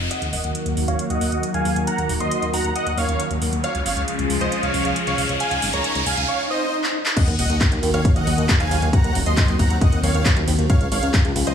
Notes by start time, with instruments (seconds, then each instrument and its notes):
Already playing: riser
0.11 analog synth pad D#3 F#3 A#3 F#4, supersaw synth D#5 F#5, closed hi-hat, riser
0.22 analog synth bass D#2, closed hi-hat
0.33 analog synth bass D#1, supersaw synth D#5 F#5, open hi-hat
0.44 analog synth bass D#2, closed hi-hat
0.55 closed hi-hat
0.66 analog synth bass D#2, closed hi-hat
0.77 analog synth bass D#2, open hi-hat
0.88 analog synth bass D#2, supersaw synth C#5 F5, closed hi-hat
0.99 closed hi-hat
1.10 analog synth bass D#2, supersaw synth D#5 F#5, closed hi-hat
1.21 analog synth bass D#2, open hi-hat
1.32 analog synth bass D#2, closed hi-hat
1.43 closed hi-hat
1.54 analog synth bass D#2, supersaw synth F5 G#5, closed hi-hat
1.65 analog synth bass D#2, open hi-hat
1.76 analog synth bass D#2, closed hi-hat
1.87 supersaw synth F#5 A#5, closed hi-hat
1.98 analog synth bass D#2, closed hi-hat
2.09 analog synth bass D#1, open hi-hat
2.20 analog synth bass D#2, supersaw synth D#5 C6, closed hi-hat
2.31 closed hi-hat
2.42 analog synth bass D#2, closed hi-hat
2.53 analog synth bass D#2, supersaw synth F#5 A#5, open hi-hat
2.65 analog synth bass D#2, closed hi-hat
2.76 supersaw synth D#5 F#5, closed hi-hat
2.87 analog synth bass D#2, closed hi-hat
2.98 analog synth bass D#2, supersaw synth C#5 F5, open hi-hat
3.09 analog synth bass D#2, closed hi-hat
3.20 closed hi-hat
3.31 analog synth bass D#2, closed hi-hat
3.42 analog synth bass D#2, open hi-hat
3.53 analog synth bass D#2, closed hi-hat
3.64 analog synth pad C#3 F3 G#3 F4, supersaw synth C#5 F5, closed hi-hat
3.75 analog synth bass C#2, closed hi-hat
3.86 analog synth bass G#1, supersaw synth C#5 F5, open hi-hat
3.97 analog synth bass C#2, closed hi-hat
4.08 closed hi-hat
4.19 analog synth bass C#2, closed hi-hat
4.30 analog synth bass C#2, open hi-hat
4.41 analog synth bass C#2, supersaw synth C5 D#5, closed hi-hat
4.52 closed hi-hat
4.63 analog synth bass C#2, supersaw synth C#5 F5, closed hi-hat
4.74 analog synth bass C#2, open hi-hat
4.85 analog synth bass C#2, closed hi-hat
4.96 closed hi-hat
5.07 analog synth bass C#2, supersaw synth C#5 F5, closed hi-hat
5.18 analog synth bass C#2, open hi-hat
5.29 analog synth bass C#2, closed hi-hat
5.40 analog synth pad D#4, supersaw synth F5 G#5, closed hi-hat
5.51 analog synth bass C#2, closed hi-hat
5.62 analog synth bass G#1, open hi-hat
5.73 analog synth bass C#2, supersaw synth C#5 A#5, closed hi-hat
5.84 closed hi-hat
5.95 analog synth bass C#2, closed hi-hat
6.06 analog synth bass C#2, supersaw synth F5 G#5, open hi-hat
6.17 analog synth bass C#2, closed hi-hat
6.28 supersaw synth C#5 F5, swell
6.50 supersaw synth C5 D#5
6.84 clap
7.06 clap
7.17 analog synth pad D#3 F#3 A#3 F#4, supersaw synth D#5 F#5, kick, closed hi-hat, crash, sub drop
7.28 analog synth bass D#2, closed hi-hat
7.39 analog synth bass D#1, supersaw synth D#5 F#5, open hi-hat, ride
7.50 analog synth bass D#2, closed hi-hat
7.61 kick, clap, closed hi-hat
7.72 analog synth bass D#2, closed hi-hat
7.83 analog synth bass D#2, open hi-hat, ride
7.94 analog synth bass D#2, supersaw synth C#5 F5, closed hi-hat
8.05 kick, closed hi-hat
8.16 analog synth bass D#2, supersaw synth D#5 F#5, closed hi-hat
8.27 analog synth bass D#2, open hi-hat, ride
8.38 analog synth bass D#2, closed hi-hat
8.49 kick, clap, closed hi-hat
8.60 analog synth bass D#2, supersaw synth F5 G#5, closed hi-hat
8.71 analog synth bass D#2, open hi-hat, ride
8.82 analog synth bass D#2, closed hi-hat
8.93 analog synth pad C4, supersaw synth F#5 A#5, kick, closed hi-hat
9.04 analog synth bass D#2, closed hi-hat
9.15 analog synth bass D#1, open hi-hat, ride
9.26 analog synth bass D#2, supersaw synth D#5 C6, closed hi-hat
9.37 kick, clap, closed hi-hat
9.48 analog synth bass D#2, closed hi-hat
9.59 analog synth bass D#2, supersaw synth F#5 A#5, kick, open hi-hat, ride
9.70 analog synth bass D#2, closed hi-hat
9.81 supersaw synth D#5 F#5, kick, closed hi-hat
9.92 analog synth bass D#2, closed hi-hat
10.03 analog synth bass D#2, supersaw synth C#5 F5, open hi-hat, ride
10.15 analog synth bass D#2, closed hi-hat
10.26 kick, clap, closed hi-hat
10.37 analog synth bass D#2, closed hi-hat
10.48 analog synth bass D#2, open hi-hat, ride
10.59 analog synth bass D#2, closed hi-hat
10.70 analog synth pad C#3 F3 G#3 F4, supersaw synth C#5 F5, kick, closed hi-hat
10.81 analog synth bass C#2, closed hi-hat
10.92 analog synth bass G#1, supersaw synth C#5 F5, open hi-hat, ride
11.03 analog synth bass C#2, closed hi-hat
11.14 kick, clap, closed hi-hat
11.25 analog synth bass C#2, closed hi-hat
11.36 analog synth bass C#2, open hi-hat, ride
11.47 analog synth bass C#2, supersaw synth C5 D#5, closed hi-hat